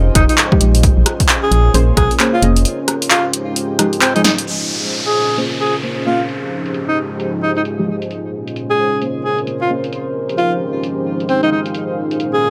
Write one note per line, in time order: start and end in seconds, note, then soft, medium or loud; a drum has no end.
0.00 0.10 F1 medium
0.00 1.42 G#3 medium
0.00 0.82 D#4 medium
0.00 1.57 F4 medium
0.00 0.82 G4 medium
0.00 4.43 G#4 medium
0.00 4.43 C5 medium
0.00 1.57 D#5 medium
0.15 0.25 F1 loud
0.15 0.24 D#4 medium
0.15 kick loud
0.15 cross-stick medium
0.15 closed hi-hat loud
0.29 0.35 D#4 medium
0.29 closed hi-hat soft
0.38 clap loud
0.38 closed hi-hat medium
0.52 0.59 F3 medium
0.52 0.59 G#3 medium
0.52 0.59 D#4 medium
0.52 0.59 G4 medium
0.52 kick loud
0.61 0.91 A#1 medium
0.61 0.75 F3 medium
0.61 0.75 G#3 medium
0.61 0.75 D#4 medium
0.61 0.75 G4 medium
0.61 closed hi-hat medium
0.75 closed hi-hat medium
0.83 2.63 C#4 medium
0.83 2.65 C#4 medium
0.83 2.63 F4 medium
0.83 kick loud
0.83 closed hi-hat medium
0.97 1.04 A#1 loud
1.06 cross-stick medium
1.06 closed hi-hat loud
1.15 3.39 C5 medium
1.20 3.39 A#4 medium
1.20 kick medium
1.20 closed hi-hat medium
1.29 clap loud
1.29 closed hi-hat medium
1.43 1.74 G#4 medium
1.43 2.65 G#5 medium
1.51 1.69 A#1 loud
1.51 closed hi-hat medium
1.74 1.92 A#1 medium
1.74 2.18 A#3 medium
1.74 2.18 C#4 medium
1.74 2.18 G#4 medium
1.74 2.18 C5 loud
1.74 closed hi-hat medium
1.97 2.07 A#1 loud
1.97 2.12 G#4 medium
1.97 kick loud
1.97 cross-stick medium
1.97 closed hi-hat loud
2.11 closed hi-hat soft
2.20 2.34 A#3 medium
2.20 2.34 C#4 medium
2.20 2.34 G#4 medium
2.20 2.34 C5 medium
2.20 clap loud
2.20 closed hi-hat medium
2.34 2.44 F4 medium
2.42 2.65 F1 loud
2.42 2.50 A#3 medium
2.42 2.50 C#4 medium
2.42 2.50 G#4 medium
2.42 2.50 D#5 loud
2.42 closed hi-hat medium
2.56 closed hi-hat medium
2.65 4.45 D#4 medium
2.65 5.21 F4 medium
2.65 4.45 G4 medium
2.65 closed hi-hat medium
2.85 5.21 G#3 medium
2.85 cross-stick medium
2.85 closed hi-hat loud
3.02 closed hi-hat medium
3.11 3.26 F4 medium
3.11 clap loud
3.11 closed hi-hat medium
3.15 4.47 G5 medium
3.20 5.21 D#5 medium
3.33 closed hi-hat medium
3.56 closed hi-hat medium
3.79 3.86 F3 medium
3.79 3.86 G#3 medium
3.79 3.86 D#4 medium
3.79 3.86 G4 medium
3.79 cross-stick medium
3.79 closed hi-hat loud
3.93 closed hi-hat soft
4.01 4.13 C4 medium
4.01 clap loud
4.01 closed hi-hat medium
4.16 4.21 F3 medium
4.16 4.21 G#3 medium
4.16 4.21 D#4 medium
4.16 4.21 G#4 medium
4.16 closed hi-hat soft
4.24 4.33 D#4 medium
4.24 snare medium
4.24 closed hi-hat medium
4.38 closed hi-hat medium
4.47 6.27 A#2 medium
4.47 6.27 C#4 medium
4.47 6.29 C#4 medium
4.47 6.27 F4 medium
4.47 9.88 G#4 medium
4.47 8.07 C5 medium
4.47 closed hi-hat medium
4.47 downlifter medium
4.70 7.03 A#4 medium
4.70 6.96 C5 medium
4.84 closed hi-hat medium
4.93 closed hi-hat medium
5.06 5.38 G#4 medium
5.38 5.81 A#3 medium
5.38 5.81 C#4 medium
5.38 5.81 G#4 medium
5.38 5.81 C5 loud
5.38 closed hi-hat medium
5.61 5.76 G#4 medium
5.75 closed hi-hat soft
5.83 5.98 A#3 medium
5.83 5.98 C#4 medium
5.83 5.98 G#4 medium
5.83 5.98 C5 medium
5.83 closed hi-hat medium
6.06 6.14 A#3 medium
6.06 6.14 C#4 medium
6.06 6.21 F4 medium
6.06 6.14 G#4 medium
6.06 6.14 D#5 medium
6.20 closed hi-hat medium
6.29 8.09 F3 medium
6.29 8.09 D#4 medium
6.29 8.85 F4 medium
6.29 8.09 G4 medium
6.29 closed hi-hat medium
6.41 8.84 G#3 medium
6.41 8.84 D#5 medium
6.66 closed hi-hat medium
6.70 8.11 G5 medium
6.74 closed hi-hat medium
6.88 6.99 D#4 medium
7.20 closed hi-hat medium
7.43 7.51 D#4 medium
7.57 7.62 D#4 medium
7.57 closed hi-hat soft
7.65 closed hi-hat medium
7.79 7.86 F3 medium
7.79 7.86 G#3 medium
7.79 7.86 D#4 medium
7.79 7.86 G4 medium
7.88 8.03 F3 medium
7.88 8.03 G#3 medium
7.88 8.03 D#4 medium
7.88 8.03 G4 medium
8.02 closed hi-hat medium
8.11 9.91 A#2 medium
8.11 9.91 C#4 medium
8.11 9.93 C#4 medium
8.11 9.91 F4 medium
8.11 12.50 C5 medium
8.11 closed hi-hat medium
8.33 10.66 C5 medium
8.42 10.67 A#4 medium
8.48 closed hi-hat medium
8.56 closed hi-hat medium
8.70 9.02 G#4 medium
9.02 9.45 A#3 medium
9.02 9.45 C#4 medium
9.02 9.45 G#4 medium
9.02 9.45 C5 loud
9.02 closed hi-hat medium
9.24 9.39 G#4 medium
9.39 closed hi-hat soft
9.47 9.62 A#3 medium
9.47 9.62 C#4 medium
9.47 9.62 G#4 medium
9.47 9.62 C5 medium
9.47 closed hi-hat medium
9.61 9.71 F4 medium
9.70 9.77 A#3 medium
9.70 9.77 C#4 medium
9.70 9.77 G#4 medium
9.70 9.77 D#5 medium
9.84 closed hi-hat medium
9.93 11.73 F3 medium
9.93 11.73 D#4 medium
9.93 12.48 D#4 medium
9.93 11.73 G4 medium
9.93 12.50 G#4 medium
9.93 closed hi-hat medium
10.28 12.42 G#3 medium
10.28 closed hi-hat medium
10.38 10.53 F4 medium
10.38 closed hi-hat medium
10.52 12.48 F5 medium
10.84 closed hi-hat medium
11.20 closed hi-hat soft
11.29 11.40 C4 medium
11.29 closed hi-hat medium
11.43 11.50 F3 medium
11.43 11.50 G#3 medium
11.43 11.48 D#4 medium
11.43 11.50 D#4 medium
11.43 11.50 G4 medium
11.43 closed hi-hat soft
11.52 11.66 F3 medium
11.52 11.66 G#3 medium
11.52 11.61 D#4 medium
11.52 11.66 D#4 medium
11.52 11.66 G4 medium
11.66 closed hi-hat medium
11.74 12.50 A#2 medium
11.74 12.50 C#4 medium
11.74 12.50 F4 medium
11.74 closed hi-hat medium
11.86 12.50 A#4 medium
12.11 closed hi-hat medium
12.16 12.50 G#5 medium
12.20 closed hi-hat medium
12.34 12.50 G#4 medium